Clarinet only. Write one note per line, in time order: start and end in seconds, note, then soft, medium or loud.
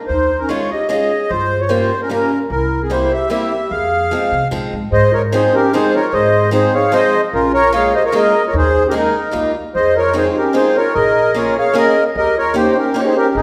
0.09 0.38 D#4 medium
0.42 0.50 C#4 medium
0.51 0.70 F4 medium
0.73 0.89 G4 medium
0.92 1.28 G#4 medium
1.32 1.59 F4 medium
1.62 1.70 F4 medium
1.71 1.99 F4 medium
2.04 2.11 C#4 medium
2.13 2.40 C#4 medium
2.51 2.79 E4 medium
2.83 2.91 C4 medium
2.92 3.11 E4 medium
3.12 3.30 G4 medium
3.31 3.68 G4 medium
3.72 4.48 G#4 medium
4.92 5.12 G#4 medium
5.12 5.21 F4 medium
5.33 5.52 D#4 medium
5.53 5.71 C#4 medium
5.72 5.92 D#4 medium
5.94 6.12 F4 medium
6.13 6.50 G#4 medium
6.52 6.71 D#4 medium
6.75 6.92 G#4 medium
6.93 7.21 G#4 medium
7.34 7.53 C#4 medium
7.55 7.72 F4 medium
7.74 7.93 G#4 medium
7.96 8.04 G4 medium
8.06 8.13 F4 medium
8.15 8.43 G#4 medium
8.47 8.54 F4 medium
8.54 8.82 D#4 medium
8.86 8.94 C#4 medium
8.96 9.52 D#4 medium
9.77 9.95 G#4 medium
9.97 10.14 F4 medium
10.16 10.30 D#4 medium
10.31 10.36 D#4 soft
10.40 10.56 C#4 medium
10.59 10.77 D#4 medium
10.79 10.95 F4 medium
10.97 11.33 G#4 medium
11.38 11.56 F4 medium
11.59 11.75 G#4 medium
11.77 12.04 G#4 medium
12.17 12.35 G4 medium
12.37 12.54 F4 medium
12.57 12.75 D#4 medium
12.77 12.94 C#4 medium
12.96 12.99 D#4 medium
12.96 13.04 F4 medium
13.05 13.15 D#4 medium
13.16 13.32 C#4 medium
13.33 13.42 C4 medium